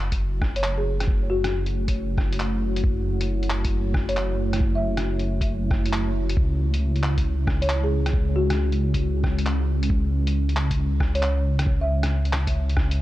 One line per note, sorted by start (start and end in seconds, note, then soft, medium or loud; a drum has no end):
0.00 6.36 F#1 medium
0.00 6.33 A3 medium
0.00 12.95 E4 medium
0.00 6.33 F#4 medium
0.00 12.95 C#5 medium
0.12 kick medium
0.12 closed hi-hat medium
0.41 kick loud
0.41 cross-stick medium
0.56 0.75 C#5 medium
0.56 closed hi-hat medium
0.63 clap loud
0.63 closed hi-hat soft
0.78 1.01 G#4 medium
1.00 cross-stick medium
1.00 closed hi-hat medium
1.08 kick loud
1.30 1.66 F#4 medium
1.44 cross-stick medium
1.44 closed hi-hat medium
1.66 closed hi-hat soft
1.88 kick medium
1.88 closed hi-hat medium
2.18 kick loud
2.18 cross-stick medium
2.33 closed hi-hat medium
2.40 clap loud
2.40 closed hi-hat soft
2.76 closed hi-hat medium
2.84 kick loud
3.21 closed hi-hat medium
3.43 closed hi-hat soft
3.50 clap loud
3.65 kick medium
3.65 closed hi-hat medium
3.94 kick loud
3.94 cross-stick medium
4.09 4.28 C#5 medium
4.09 closed hi-hat medium
4.17 clap loud
4.17 closed hi-hat soft
4.53 cross-stick medium
4.53 closed hi-hat medium
4.60 kick loud
4.75 5.36 E5 medium
4.97 cross-stick medium
4.97 closed hi-hat medium
5.20 closed hi-hat soft
5.41 kick medium
5.41 closed hi-hat medium
5.71 kick loud
5.71 cross-stick medium
5.86 closed hi-hat soft
5.93 clap loud
5.93 closed hi-hat soft
6.29 closed hi-hat medium
6.37 12.99 C#2 medium
6.37 12.95 G#3 medium
6.37 12.95 C#4 medium
6.37 kick loud
6.74 closed hi-hat medium
6.96 closed hi-hat soft
7.03 clap loud
7.18 kick medium
7.18 closed hi-hat soft
7.47 kick loud
7.47 cross-stick medium
7.62 7.81 C#5 medium
7.62 closed hi-hat soft
7.69 clap loud
7.69 closed hi-hat soft
7.84 8.07 G#4 medium
8.06 cross-stick medium
8.06 closed hi-hat medium
8.14 kick loud
8.36 8.72 F#4 medium
8.50 cross-stick medium
8.50 closed hi-hat medium
8.72 closed hi-hat soft
8.94 kick medium
8.94 closed hi-hat soft
9.24 kick loud
9.24 cross-stick medium
9.39 closed hi-hat soft
9.46 clap loud
9.46 closed hi-hat soft
9.83 closed hi-hat medium
9.90 kick loud
10.27 closed hi-hat medium
10.49 closed hi-hat soft
10.56 clap loud
10.71 kick medium
10.71 closed hi-hat medium
11.00 kick loud
11.00 cross-stick medium
11.15 11.34 C#5 medium
11.15 closed hi-hat soft
11.22 clap loud
11.22 closed hi-hat soft
11.59 cross-stick medium
11.59 closed hi-hat medium
11.66 kick loud
11.81 12.42 E5 medium
12.03 cross-stick medium
12.03 closed hi-hat medium
12.25 closed hi-hat soft
12.33 cross-stick medium
12.33 clap loud
12.47 kick medium
12.47 closed hi-hat medium
12.69 closed hi-hat soft
12.77 kick loud
12.77 cross-stick medium
12.91 closed hi-hat medium